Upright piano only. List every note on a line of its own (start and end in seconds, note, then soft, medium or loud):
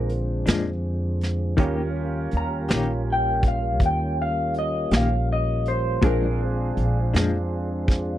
0.00 1.54 D4 medium
0.00 1.54 F4 soft
0.00 1.55 G#4 medium
0.00 1.55 C5 medium
1.58 6.00 C#4 medium
1.58 5.99 F4 soft
1.58 6.00 G4 medium
1.58 5.99 A#4 medium
6.03 8.18 C4 soft
6.03 8.18 D4 soft
6.03 8.18 F4 soft
6.03 8.18 G#4 medium